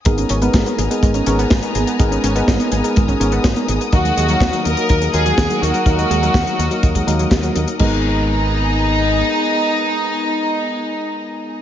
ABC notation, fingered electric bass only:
X:1
M:4/4
L:1/8
Q:1/4=124
K:G#m
V:1 name="Fingered electric bass" clef=bass
G,,, G,,, G,,, G,,, G,,, G,,, G,,, G,,, | G,,, G,,, G,,, G,,, G,,, G,,, G,,, G,,, | D,, D,, D,, D,, D,, D,, D,, D,, | D,, D,, D,, D,, D,, D,, D,, D,, |
G,,,6 z2 | z8 |]